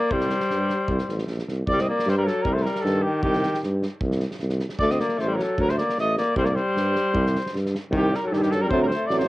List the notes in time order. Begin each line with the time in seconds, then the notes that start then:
Already playing: A#3 D5
0.11 C2 G3 C5, kick
0.21 snare
0.30 snare
0.40 snare
0.50 G2, snare
0.70 snare
0.88 C2, kick
0.98 snare
1.09 A1, snare
1.18 snare
1.27 A#1, snare
1.39 snare
1.48 C2, snare
1.67 C2 D5, kick
1.73 G3
1.78 C4 D#5, snare
1.89 A#3 D5
1.99 snare
2.06 G2 G3 C5, snare
2.17 G3 A#4
2.25 F#3 A4, snare
2.42 C2 A#4, kick
2.47 G3
2.53 A3 C5, snare
2.62 G3 A#4, snare
2.75 snare
2.81 G2 D#3 A4
2.86 snare
3.02 D#3 G4
3.23 C2 D#3 G4, kick
3.33 snare
3.43 snare
3.54 snare
3.63 G2, snare
3.82 snare
4.01 C2, kick
4.11 snare
4.20 snare
4.31 snare
4.39 C2, snare
4.49 snare
4.59 snare
4.69 snare
4.79 D2 A3 D5, kick
4.90 C4 D#5, snare
5.00 A#3 D5, snare
5.09 snare
5.18 A1 A3 C5, snare
5.28 G3
5.34 F#3 A#4
5.39 A4, snare
5.58 D2 F#3 A#4, kick
5.69 A3 C5, snare
5.78 A#3 D5, snare
5.89 snare
5.98 A1 A3 D#5, snare
6.17 A#3 D5, snare
6.36 C2 G3 C5, kick
6.45 A#3 D5, snare
6.54 G3 C5, snare
6.76 G2, snare
6.95 snare
7.14 C2, kick
7.26 snare
7.35 snare
7.46 snare
7.54 G2, snare
7.66 snare
7.75 snare
7.91 C2 D#3 G3 D#4, kick
7.96 G4
8.13 G3 A#4, snare
8.23 F#3
8.27 A4
8.31 G2 D#3 G3 D#4 G4, snare
8.38 F#3 G4 A4
8.42 D#3, snare
8.51 F#3 A4, snare
8.62 G3 A#4
8.70 D2 F#3 A3 C4 C5, kick
8.82 G3 A#4
8.87 C5, snare
8.93 A3
9.07 A1 F#3 D5, snare
9.11 A3 C4
9.18 C5, snare
9.24 A3